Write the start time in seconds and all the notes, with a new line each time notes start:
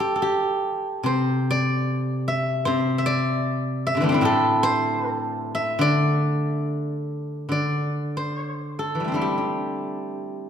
Already playing: G3 A4 C5
0.00 G4
0.16 A4
0.22 G4
1.03 C3 C5
1.51 D5
2.28 E5
2.65 C3 C5
2.98 E5
3.06 D5
3.87 E5
3.95 C3 D3
4.01 E3 G3 A3
4.09 C4 D4
4.14 E4
4.21 A2 G4
4.25 A4
4.63 C5
5.13 A4
5.55 E5
5.79 D3 D5
7.49 D3 D5
8.17 C5
8.79 A4
8.95 E3
9.00 G3
9.04 A3 C4
9.12 G3 D4 E4
9.22 G4
9.38 D4